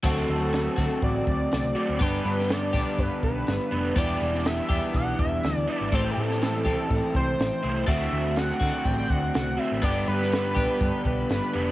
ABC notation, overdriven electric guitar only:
X:1
M:4/4
L:1/8
Q:1/4=122
K:Dmix
V:1 name="Overdriven electric guitar"
[D,A,CF]6- [D,A,CF] [D,A,CF] | [G,,D,G,B,D]6- [G,,D,G,B,D] [G,,D,G,B,D] | [E,G,B,E]6- [E,G,B,E] [E,G,B,E] | [A,,E,A,CE]6- [A,,E,A,CE] [A,,E,A,CE] |
[D,A,CF]6- [D,A,CF] [D,A,CF] | [G,,D,G,B,D]6- [G,,D,G,B,D] [G,,D,G,B,D] |]